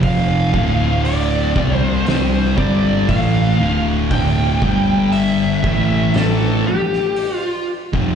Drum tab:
HH |o---o---o---o---|o---o---o---o---|
SD |--------o-------|--------o--o----|
BD |o-o---o---o-o---|o-o---o--------o|